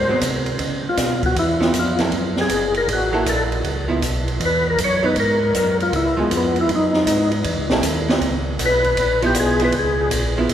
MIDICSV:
0, 0, Header, 1, 5, 480
1, 0, Start_track
1, 0, Tempo, 380952
1, 745, Time_signature, 4, 2, 24, 8
1, 13277, End_track
2, 0, Start_track
2, 0, Title_t, "Tonewheel organ"
2, 0, Program_c, 0, 16
2, 0, Note_on_c, 0, 72, 89
2, 249, Note_off_c, 0, 72, 0
2, 1124, Note_on_c, 0, 65, 62
2, 1542, Note_off_c, 0, 65, 0
2, 1586, Note_on_c, 0, 66, 90
2, 1723, Note_off_c, 0, 66, 0
2, 1753, Note_on_c, 0, 64, 72
2, 2177, Note_off_c, 0, 64, 0
2, 2262, Note_on_c, 0, 65, 66
2, 2532, Note_off_c, 0, 65, 0
2, 3037, Note_on_c, 0, 68, 66
2, 3458, Note_off_c, 0, 68, 0
2, 3497, Note_on_c, 0, 70, 90
2, 3637, Note_off_c, 0, 70, 0
2, 3690, Note_on_c, 0, 66, 52
2, 4106, Note_off_c, 0, 66, 0
2, 4151, Note_on_c, 0, 69, 75
2, 4328, Note_off_c, 0, 69, 0
2, 5612, Note_on_c, 0, 71, 80
2, 5888, Note_off_c, 0, 71, 0
2, 5921, Note_on_c, 0, 70, 81
2, 6051, Note_off_c, 0, 70, 0
2, 6101, Note_on_c, 0, 73, 88
2, 6367, Note_on_c, 0, 71, 82
2, 6373, Note_off_c, 0, 73, 0
2, 6513, Note_off_c, 0, 71, 0
2, 6549, Note_on_c, 0, 70, 62
2, 7275, Note_off_c, 0, 70, 0
2, 7340, Note_on_c, 0, 65, 74
2, 7480, Note_off_c, 0, 65, 0
2, 7510, Note_on_c, 0, 64, 72
2, 7797, Note_off_c, 0, 64, 0
2, 7813, Note_on_c, 0, 56, 53
2, 7956, Note_off_c, 0, 56, 0
2, 8025, Note_on_c, 0, 59, 71
2, 8295, Note_off_c, 0, 59, 0
2, 8329, Note_on_c, 0, 64, 89
2, 8455, Note_off_c, 0, 64, 0
2, 8511, Note_on_c, 0, 63, 68
2, 9216, Note_off_c, 0, 63, 0
2, 10906, Note_on_c, 0, 71, 84
2, 11614, Note_off_c, 0, 71, 0
2, 11672, Note_on_c, 0, 67, 74
2, 11806, Note_off_c, 0, 67, 0
2, 11841, Note_on_c, 0, 68, 85
2, 12123, Note_off_c, 0, 68, 0
2, 12153, Note_on_c, 0, 71, 95
2, 12287, Note_off_c, 0, 71, 0
2, 12338, Note_on_c, 0, 68, 56
2, 12751, Note_off_c, 0, 68, 0
2, 13277, End_track
3, 0, Start_track
3, 0, Title_t, "Hollow-body jazz guitar"
3, 0, Program_c, 1, 26
3, 115, Note_on_c, 1, 54, 66
3, 129, Note_on_c, 1, 59, 65
3, 137, Note_on_c, 1, 60, 67
3, 255, Note_off_c, 1, 54, 0
3, 262, Note_off_c, 1, 59, 0
3, 266, Note_off_c, 1, 60, 0
3, 2020, Note_on_c, 1, 53, 57
3, 2025, Note_on_c, 1, 59, 67
3, 2036, Note_on_c, 1, 64, 63
3, 2469, Note_off_c, 1, 53, 0
3, 2472, Note_off_c, 1, 59, 0
3, 2477, Note_off_c, 1, 64, 0
3, 2504, Note_on_c, 1, 54, 57
3, 2512, Note_on_c, 1, 58, 62
3, 2521, Note_on_c, 1, 64, 68
3, 2527, Note_on_c, 1, 69, 61
3, 2649, Note_off_c, 1, 54, 0
3, 2653, Note_off_c, 1, 58, 0
3, 2658, Note_off_c, 1, 64, 0
3, 2661, Note_off_c, 1, 69, 0
3, 3938, Note_on_c, 1, 54, 69
3, 3944, Note_on_c, 1, 58, 70
3, 3958, Note_on_c, 1, 64, 70
3, 3958, Note_on_c, 1, 69, 77
3, 4550, Note_off_c, 1, 54, 0
3, 4553, Note_off_c, 1, 58, 0
3, 4560, Note_off_c, 1, 64, 0
3, 4560, Note_off_c, 1, 69, 0
3, 4891, Note_on_c, 1, 53, 60
3, 4899, Note_on_c, 1, 59, 58
3, 4909, Note_on_c, 1, 64, 69
3, 5043, Note_off_c, 1, 53, 0
3, 5047, Note_off_c, 1, 59, 0
3, 5052, Note_off_c, 1, 64, 0
3, 6338, Note_on_c, 1, 54, 65
3, 6345, Note_on_c, 1, 59, 64
3, 6348, Note_on_c, 1, 63, 69
3, 6487, Note_off_c, 1, 54, 0
3, 6490, Note_off_c, 1, 59, 0
3, 6492, Note_off_c, 1, 63, 0
3, 7775, Note_on_c, 1, 53, 69
3, 7791, Note_on_c, 1, 59, 59
3, 7797, Note_on_c, 1, 64, 60
3, 8390, Note_off_c, 1, 53, 0
3, 8398, Note_off_c, 1, 59, 0
3, 8400, Note_off_c, 1, 64, 0
3, 9713, Note_on_c, 1, 54, 52
3, 9721, Note_on_c, 1, 58, 66
3, 9726, Note_on_c, 1, 64, 66
3, 9730, Note_on_c, 1, 69, 67
3, 10157, Note_off_c, 1, 54, 0
3, 10161, Note_off_c, 1, 58, 0
3, 10164, Note_off_c, 1, 64, 0
3, 10165, Note_off_c, 1, 69, 0
3, 10184, Note_on_c, 1, 53, 61
3, 10186, Note_on_c, 1, 59, 60
3, 10195, Note_on_c, 1, 64, 67
3, 10330, Note_off_c, 1, 53, 0
3, 10332, Note_off_c, 1, 59, 0
3, 10336, Note_off_c, 1, 64, 0
3, 11621, Note_on_c, 1, 53, 69
3, 11633, Note_on_c, 1, 59, 73
3, 11634, Note_on_c, 1, 64, 73
3, 12071, Note_off_c, 1, 53, 0
3, 12077, Note_off_c, 1, 59, 0
3, 12078, Note_off_c, 1, 64, 0
3, 12096, Note_on_c, 1, 53, 66
3, 12106, Note_on_c, 1, 59, 60
3, 12113, Note_on_c, 1, 64, 70
3, 12246, Note_off_c, 1, 53, 0
3, 12251, Note_off_c, 1, 59, 0
3, 12255, Note_off_c, 1, 64, 0
3, 13077, Note_on_c, 1, 53, 72
3, 13082, Note_on_c, 1, 59, 66
3, 13089, Note_on_c, 1, 64, 73
3, 13217, Note_off_c, 1, 53, 0
3, 13219, Note_off_c, 1, 59, 0
3, 13223, Note_off_c, 1, 64, 0
3, 13277, End_track
4, 0, Start_track
4, 0, Title_t, "Tonewheel organ"
4, 0, Program_c, 2, 16
4, 101, Note_on_c, 2, 44, 37
4, 183, Note_off_c, 2, 44, 0
4, 266, Note_on_c, 2, 48, 74
4, 731, Note_off_c, 2, 48, 0
4, 743, Note_on_c, 2, 49, 62
4, 1032, Note_off_c, 2, 49, 0
4, 1048, Note_on_c, 2, 49, 36
4, 1132, Note_off_c, 2, 49, 0
4, 1232, Note_on_c, 2, 47, 81
4, 1694, Note_off_c, 2, 47, 0
4, 1708, Note_on_c, 2, 40, 75
4, 2172, Note_off_c, 2, 40, 0
4, 2188, Note_on_c, 2, 41, 74
4, 2652, Note_off_c, 2, 41, 0
4, 2663, Note_on_c, 2, 42, 73
4, 3130, Note_off_c, 2, 42, 0
4, 3146, Note_on_c, 2, 30, 82
4, 3611, Note_off_c, 2, 30, 0
4, 3623, Note_on_c, 2, 33, 80
4, 4089, Note_off_c, 2, 33, 0
4, 4109, Note_on_c, 2, 34, 87
4, 4573, Note_off_c, 2, 34, 0
4, 4587, Note_on_c, 2, 37, 71
4, 5052, Note_off_c, 2, 37, 0
4, 5062, Note_on_c, 2, 35, 91
4, 5529, Note_off_c, 2, 35, 0
4, 5542, Note_on_c, 2, 40, 83
4, 6009, Note_off_c, 2, 40, 0
4, 6023, Note_on_c, 2, 42, 87
4, 6490, Note_off_c, 2, 42, 0
4, 6505, Note_on_c, 2, 44, 77
4, 6971, Note_off_c, 2, 44, 0
4, 6982, Note_on_c, 2, 42, 92
4, 7450, Note_off_c, 2, 42, 0
4, 7465, Note_on_c, 2, 37, 75
4, 7761, Note_off_c, 2, 37, 0
4, 7778, Note_on_c, 2, 37, 36
4, 7860, Note_off_c, 2, 37, 0
4, 7945, Note_on_c, 2, 41, 84
4, 8412, Note_off_c, 2, 41, 0
4, 8425, Note_on_c, 2, 42, 65
4, 8891, Note_off_c, 2, 42, 0
4, 8903, Note_on_c, 2, 44, 82
4, 9370, Note_off_c, 2, 44, 0
4, 9382, Note_on_c, 2, 40, 78
4, 9539, Note_off_c, 2, 40, 0
4, 9541, Note_on_c, 2, 37, 49
4, 9691, Note_on_c, 2, 34, 56
4, 9704, Note_off_c, 2, 37, 0
4, 9847, Note_off_c, 2, 34, 0
4, 9862, Note_on_c, 2, 39, 84
4, 10330, Note_off_c, 2, 39, 0
4, 10343, Note_on_c, 2, 37, 72
4, 10811, Note_off_c, 2, 37, 0
4, 10828, Note_on_c, 2, 35, 82
4, 11293, Note_off_c, 2, 35, 0
4, 11303, Note_on_c, 2, 34, 82
4, 11771, Note_off_c, 2, 34, 0
4, 11776, Note_on_c, 2, 35, 88
4, 12247, Note_off_c, 2, 35, 0
4, 12258, Note_on_c, 2, 37, 76
4, 12728, Note_off_c, 2, 37, 0
4, 12735, Note_on_c, 2, 34, 98
4, 13206, Note_off_c, 2, 34, 0
4, 13214, Note_on_c, 2, 35, 81
4, 13277, Note_off_c, 2, 35, 0
4, 13277, End_track
5, 0, Start_track
5, 0, Title_t, "Drums"
5, 270, Note_on_c, 9, 44, 58
5, 270, Note_on_c, 9, 51, 67
5, 272, Note_on_c, 9, 36, 24
5, 396, Note_off_c, 9, 44, 0
5, 396, Note_off_c, 9, 51, 0
5, 398, Note_off_c, 9, 36, 0
5, 580, Note_on_c, 9, 51, 41
5, 706, Note_off_c, 9, 51, 0
5, 742, Note_on_c, 9, 51, 54
5, 750, Note_on_c, 9, 36, 22
5, 868, Note_off_c, 9, 51, 0
5, 876, Note_off_c, 9, 36, 0
5, 1227, Note_on_c, 9, 44, 59
5, 1227, Note_on_c, 9, 51, 63
5, 1228, Note_on_c, 9, 38, 36
5, 1231, Note_on_c, 9, 36, 25
5, 1353, Note_off_c, 9, 44, 0
5, 1353, Note_off_c, 9, 51, 0
5, 1354, Note_off_c, 9, 38, 0
5, 1357, Note_off_c, 9, 36, 0
5, 1548, Note_on_c, 9, 51, 42
5, 1550, Note_on_c, 9, 36, 47
5, 1674, Note_off_c, 9, 51, 0
5, 1676, Note_off_c, 9, 36, 0
5, 1715, Note_on_c, 9, 36, 17
5, 1718, Note_on_c, 9, 51, 63
5, 1841, Note_off_c, 9, 36, 0
5, 1844, Note_off_c, 9, 51, 0
5, 2034, Note_on_c, 9, 38, 44
5, 2160, Note_off_c, 9, 38, 0
5, 2188, Note_on_c, 9, 44, 57
5, 2188, Note_on_c, 9, 51, 65
5, 2190, Note_on_c, 9, 36, 23
5, 2314, Note_off_c, 9, 44, 0
5, 2314, Note_off_c, 9, 51, 0
5, 2316, Note_off_c, 9, 36, 0
5, 2502, Note_on_c, 9, 51, 45
5, 2503, Note_on_c, 9, 38, 40
5, 2628, Note_off_c, 9, 51, 0
5, 2629, Note_off_c, 9, 38, 0
5, 2669, Note_on_c, 9, 51, 51
5, 2671, Note_on_c, 9, 36, 19
5, 2795, Note_off_c, 9, 51, 0
5, 2797, Note_off_c, 9, 36, 0
5, 2980, Note_on_c, 9, 38, 47
5, 3106, Note_off_c, 9, 38, 0
5, 3143, Note_on_c, 9, 44, 51
5, 3143, Note_on_c, 9, 51, 66
5, 3146, Note_on_c, 9, 36, 18
5, 3269, Note_off_c, 9, 44, 0
5, 3269, Note_off_c, 9, 51, 0
5, 3272, Note_off_c, 9, 36, 0
5, 3458, Note_on_c, 9, 51, 43
5, 3584, Note_off_c, 9, 51, 0
5, 3629, Note_on_c, 9, 36, 26
5, 3635, Note_on_c, 9, 51, 67
5, 3755, Note_off_c, 9, 36, 0
5, 3761, Note_off_c, 9, 51, 0
5, 4107, Note_on_c, 9, 36, 23
5, 4111, Note_on_c, 9, 44, 54
5, 4111, Note_on_c, 9, 51, 62
5, 4233, Note_off_c, 9, 36, 0
5, 4237, Note_off_c, 9, 44, 0
5, 4237, Note_off_c, 9, 51, 0
5, 4435, Note_on_c, 9, 51, 39
5, 4561, Note_off_c, 9, 51, 0
5, 4588, Note_on_c, 9, 36, 22
5, 4592, Note_on_c, 9, 51, 54
5, 4714, Note_off_c, 9, 36, 0
5, 4718, Note_off_c, 9, 51, 0
5, 5067, Note_on_c, 9, 36, 23
5, 5068, Note_on_c, 9, 44, 55
5, 5068, Note_on_c, 9, 51, 59
5, 5193, Note_off_c, 9, 36, 0
5, 5194, Note_off_c, 9, 44, 0
5, 5194, Note_off_c, 9, 51, 0
5, 5390, Note_on_c, 9, 51, 42
5, 5516, Note_off_c, 9, 51, 0
5, 5548, Note_on_c, 9, 36, 27
5, 5550, Note_on_c, 9, 51, 60
5, 5674, Note_off_c, 9, 36, 0
5, 5676, Note_off_c, 9, 51, 0
5, 6026, Note_on_c, 9, 36, 23
5, 6028, Note_on_c, 9, 44, 48
5, 6028, Note_on_c, 9, 51, 70
5, 6152, Note_off_c, 9, 36, 0
5, 6154, Note_off_c, 9, 44, 0
5, 6154, Note_off_c, 9, 51, 0
5, 6499, Note_on_c, 9, 51, 60
5, 6505, Note_on_c, 9, 36, 20
5, 6625, Note_off_c, 9, 51, 0
5, 6631, Note_off_c, 9, 36, 0
5, 6987, Note_on_c, 9, 36, 19
5, 6988, Note_on_c, 9, 44, 58
5, 6988, Note_on_c, 9, 51, 61
5, 7113, Note_off_c, 9, 36, 0
5, 7114, Note_off_c, 9, 44, 0
5, 7114, Note_off_c, 9, 51, 0
5, 7312, Note_on_c, 9, 51, 38
5, 7438, Note_off_c, 9, 51, 0
5, 7469, Note_on_c, 9, 36, 25
5, 7473, Note_on_c, 9, 51, 58
5, 7595, Note_off_c, 9, 36, 0
5, 7599, Note_off_c, 9, 51, 0
5, 7946, Note_on_c, 9, 36, 18
5, 7952, Note_on_c, 9, 44, 48
5, 7952, Note_on_c, 9, 51, 65
5, 8072, Note_off_c, 9, 36, 0
5, 8078, Note_off_c, 9, 44, 0
5, 8078, Note_off_c, 9, 51, 0
5, 8265, Note_on_c, 9, 51, 41
5, 8391, Note_off_c, 9, 51, 0
5, 8428, Note_on_c, 9, 36, 17
5, 8429, Note_on_c, 9, 51, 54
5, 8554, Note_off_c, 9, 36, 0
5, 8555, Note_off_c, 9, 51, 0
5, 8739, Note_on_c, 9, 38, 31
5, 8865, Note_off_c, 9, 38, 0
5, 8907, Note_on_c, 9, 44, 61
5, 8907, Note_on_c, 9, 51, 71
5, 8908, Note_on_c, 9, 36, 22
5, 9033, Note_off_c, 9, 44, 0
5, 9033, Note_off_c, 9, 51, 0
5, 9034, Note_off_c, 9, 36, 0
5, 9218, Note_on_c, 9, 51, 41
5, 9344, Note_off_c, 9, 51, 0
5, 9378, Note_on_c, 9, 51, 63
5, 9385, Note_on_c, 9, 36, 23
5, 9504, Note_off_c, 9, 51, 0
5, 9511, Note_off_c, 9, 36, 0
5, 9699, Note_on_c, 9, 38, 55
5, 9825, Note_off_c, 9, 38, 0
5, 9864, Note_on_c, 9, 44, 60
5, 9864, Note_on_c, 9, 51, 68
5, 9869, Note_on_c, 9, 36, 16
5, 9990, Note_off_c, 9, 44, 0
5, 9990, Note_off_c, 9, 51, 0
5, 9995, Note_off_c, 9, 36, 0
5, 10196, Note_on_c, 9, 38, 60
5, 10322, Note_off_c, 9, 38, 0
5, 10349, Note_on_c, 9, 36, 24
5, 10351, Note_on_c, 9, 51, 54
5, 10475, Note_off_c, 9, 36, 0
5, 10477, Note_off_c, 9, 51, 0
5, 10825, Note_on_c, 9, 44, 59
5, 10825, Note_on_c, 9, 51, 69
5, 10827, Note_on_c, 9, 36, 21
5, 10951, Note_off_c, 9, 44, 0
5, 10951, Note_off_c, 9, 51, 0
5, 10953, Note_off_c, 9, 36, 0
5, 11143, Note_on_c, 9, 51, 40
5, 11269, Note_off_c, 9, 51, 0
5, 11302, Note_on_c, 9, 51, 68
5, 11305, Note_on_c, 9, 36, 20
5, 11428, Note_off_c, 9, 51, 0
5, 11431, Note_off_c, 9, 36, 0
5, 11621, Note_on_c, 9, 51, 42
5, 11747, Note_off_c, 9, 51, 0
5, 11775, Note_on_c, 9, 44, 62
5, 11775, Note_on_c, 9, 51, 61
5, 11782, Note_on_c, 9, 36, 20
5, 11901, Note_off_c, 9, 44, 0
5, 11901, Note_off_c, 9, 51, 0
5, 11908, Note_off_c, 9, 36, 0
5, 12090, Note_on_c, 9, 51, 43
5, 12216, Note_off_c, 9, 51, 0
5, 12251, Note_on_c, 9, 51, 56
5, 12261, Note_on_c, 9, 36, 24
5, 12377, Note_off_c, 9, 51, 0
5, 12387, Note_off_c, 9, 36, 0
5, 12739, Note_on_c, 9, 44, 56
5, 12739, Note_on_c, 9, 51, 73
5, 12742, Note_on_c, 9, 36, 19
5, 12865, Note_off_c, 9, 44, 0
5, 12865, Note_off_c, 9, 51, 0
5, 12868, Note_off_c, 9, 36, 0
5, 13220, Note_on_c, 9, 36, 20
5, 13221, Note_on_c, 9, 51, 62
5, 13277, Note_off_c, 9, 36, 0
5, 13277, Note_off_c, 9, 51, 0
5, 13277, End_track
0, 0, End_of_file